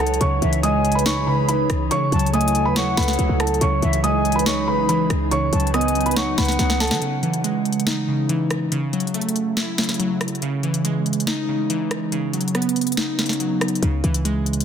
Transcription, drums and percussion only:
0.07 closed hi-hat medium
0.14 closed hi-hat medium
0.21 closed hi-hat medium
0.42 closed hi-hat soft
0.53 closed hi-hat medium
0.63 closed hi-hat medium
0.85 closed hi-hat soft
0.92 closed hi-hat medium
0.99 closed hi-hat medium
1.06 snare loud
1.06 closed hi-hat medium
1.49 closed hi-hat medium
1.70 cross-stick loud
1.70 closed hi-hat medium
1.91 closed hi-hat medium
2.12 closed hi-hat soft
2.19 closed hi-hat medium
2.27 closed hi-hat medium
2.34 closed hi-hat medium
2.41 closed hi-hat medium
2.48 closed hi-hat medium
2.55 closed hi-hat medium
2.76 snare loud
2.76 closed hi-hat medium
2.97 snare loud
2.97 closed hi-hat medium
3.03 closed hi-hat medium
3.08 snare medium
3.08 closed hi-hat medium
3.13 closed hi-hat medium
3.19 closed hi-hat medium
3.40 cross-stick loud
3.40 closed hi-hat medium
3.47 closed hi-hat medium
3.54 closed hi-hat soft
3.61 closed hi-hat medium
3.82 closed hi-hat soft
3.93 closed hi-hat medium
4.04 closed hi-hat medium
4.25 closed hi-hat soft
4.32 closed hi-hat medium
4.39 closed hi-hat medium
4.46 snare loud
4.46 closed hi-hat medium
4.89 closed hi-hat medium
5.10 cross-stick loud
5.10 closed hi-hat medium
5.31 closed hi-hat medium
5.53 closed hi-hat medium
5.53 open hi-hat medium
5.60 closed hi-hat medium
5.67 closed hi-hat medium
5.74 cross-stick medium
5.74 closed hi-hat medium
5.81 closed hi-hat medium
5.88 closed hi-hat medium
5.95 closed hi-hat medium
6.01 closed hi-hat medium
6.06 closed hi-hat medium
6.11 closed hi-hat medium
6.17 snare loud
6.17 closed hi-hat medium
6.38 snare loud
6.38 closed hi-hat medium
6.45 snare medium
6.45 closed hi-hat medium
6.52 closed hi-hat medium
6.59 snare medium
6.59 closed hi-hat medium
6.70 snare medium
6.80 snare loud
6.80 closed hi-hat medium
6.87 snare loud
6.87 closed hi-hat medium
6.95 closed hi-hat medium
7.02 closed hi-hat medium
7.23 closed hi-hat soft
7.34 closed hi-hat medium
7.44 closed hi-hat medium
7.65 closed hi-hat soft
7.73 closed hi-hat medium
7.80 closed hi-hat medium
7.87 snare loud
7.87 closed hi-hat medium
8.29 closed hi-hat medium
8.51 cross-stick loud
8.51 closed hi-hat medium
8.72 closed hi-hat medium
8.93 closed hi-hat soft
9.00 closed hi-hat soft
9.07 closed hi-hat medium
9.14 closed hi-hat medium
9.21 closed hi-hat medium
9.29 closed hi-hat medium
9.36 closed hi-hat medium
9.57 snare loud
9.57 closed hi-hat medium
9.78 snare loud
9.78 closed hi-hat medium
9.84 closed hi-hat medium
9.89 snare medium
9.89 closed hi-hat medium
9.94 closed hi-hat soft
10.00 closed hi-hat medium
10.21 cross-stick loud
10.21 closed hi-hat medium
10.28 closed hi-hat medium
10.35 closed hi-hat soft
10.42 closed hi-hat medium
10.63 closed hi-hat soft
10.74 closed hi-hat medium
10.85 closed hi-hat medium
11.06 closed hi-hat soft
11.13 closed hi-hat medium
11.20 closed hi-hat medium
11.27 snare loud
11.27 closed hi-hat medium
11.70 closed hi-hat medium
11.91 cross-stick loud
11.91 closed hi-hat medium
12.12 closed hi-hat medium
12.34 closed hi-hat medium
12.34 open hi-hat medium
12.41 closed hi-hat medium
12.48 closed hi-hat medium
12.55 cross-stick medium
12.55 closed hi-hat medium
12.62 closed hi-hat medium
12.69 closed hi-hat medium
12.76 closed hi-hat medium
12.81 closed hi-hat medium
12.87 closed hi-hat medium
12.92 closed hi-hat medium
12.97 snare loud
12.97 closed hi-hat medium
13.19 snare medium
13.19 closed hi-hat soft
13.26 snare medium
13.26 closed hi-hat medium
13.33 closed hi-hat medium
13.40 closed hi-hat medium
13.61 cross-stick loud
13.61 closed hi-hat medium
13.68 closed hi-hat medium
13.75 closed hi-hat medium
13.83 closed hi-hat medium
14.04 closed hi-hat soft
14.14 closed hi-hat medium
14.25 closed hi-hat medium
14.46 closed hi-hat soft
14.53 closed hi-hat medium
14.61 closed hi-hat medium

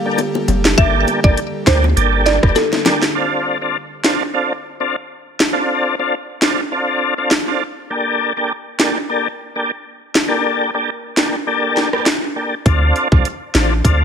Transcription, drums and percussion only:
0.18 closed hi-hat medium
0.18 high bongo medium
0.35 high bongo medium
0.48 closed hi-hat medium
0.48 low bongo medium
0.65 snare loud
0.78 kick loud
0.78 closed hi-hat medium
1.07 closed hi-hat medium
1.07 high bongo medium
1.24 kick loud
1.37 closed hi-hat medium
1.67 kick medium
1.67 snare loud
1.67 closed hi-hat medium
1.84 high bongo medium
1.97 closed hi-hat medium
2.26 snare medium
2.26 closed hi-hat medium
2.43 kick medium
2.43 cross-stick medium
2.56 snare medium
2.56 closed hi-hat medium
2.56 high bongo medium
2.73 snare medium
2.73 high bongo medium
2.86 snare loud
2.86 closed hi-hat medium
2.86 low bongo medium
3.02 snare medium
4.04 snare loud
5.40 snare loud
6.42 snare loud
7.31 snare loud
8.80 snare loud
10.15 snare loud
11.17 snare loud
11.77 snare medium
11.93 cross-stick medium
12.06 snare loud
12.66 kick loud
12.66 closed hi-hat medium
12.96 closed hi-hat medium
13.12 kick loud
13.25 closed hi-hat medium
13.55 snare loud
13.55 closed hi-hat soft
13.85 kick medium
13.85 closed hi-hat medium

